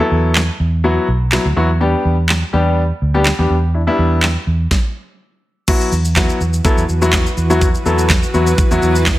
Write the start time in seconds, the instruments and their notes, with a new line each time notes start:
0.00 grand piano F#3 B3 E4 A4
0.11 fingered electric bass E2
0.35 snare, clap
0.60 fingered electric bass E2
0.84 grand piano F#3 B3 E4 F#4
1.08 fingered electric bass B1
1.32 grand piano F#3 B3 E4 F#4, snare, clap
1.45 fingered electric bass D2
1.56 fingered electric bass E2, grand piano F#3 B3 E4 F#4
1.80 grand piano G3 B3 D4 G4
2.05 fingered electric bass E2
2.29 snare, clap
2.53 fingered electric bass E2, grand piano G3 B3 D4 G4
3.02 fingered electric bass D2
3.14 grand piano G3 B3 D4 G4
3.26 snare, clap
3.39 fingered electric bass E2, grand piano G3 B3 D4 G4
3.50 fingered electric bass E2
3.74 grand piano D4 E4
3.87 grand piano G3 B3 D4 E4
3.99 fingered electric bass E2
4.23 snare, clap
4.47 fingered electric bass E2
4.71 kick, snare
5.68 ambient pad E3 E4 F#4 B4, grand piano F#3 B3 E4 F#4, kick, crash, shaker
5.81 shaker
5.92 fingered electric bass E2, shaker
6.05 shaker
6.16 grand piano F#3 B3 E4 F#4, kick, snare, clap, shaker
6.29 shaker
6.40 fingered electric bass E2, shaker
6.53 shaker
6.64 grand piano F#3 B3 E4 A4, kick, shaker
6.77 fingered electric bass E2, shaker
6.89 fingered electric bass E2, shaker
7.02 grand piano F#3 B3 E4 F#4, shaker
7.13 kick, snare, clap, shaker
7.26 shaker
7.37 fingered electric bass E2, shaker
7.50 grand piano F#3 B3 E4 F#4, shaker
7.61 kick, shaker
7.75 shaker
7.85 fingered electric bass E2, grand piano F#3 B3 E4 A4, shaker
7.98 shaker
8.10 kick, snare, clap, shaker
8.23 shaker
8.34 fingered electric bass E2, grand piano F#3 B3 E4 F#4, shaker
8.47 shaker
8.58 kick, shaker
8.71 fingered electric bass E2, grand piano F#3 B3 E4 F#4, shaker
8.82 fingered electric bass E2, shaker
8.95 shaker
9.06 kick, snare, clap, shaker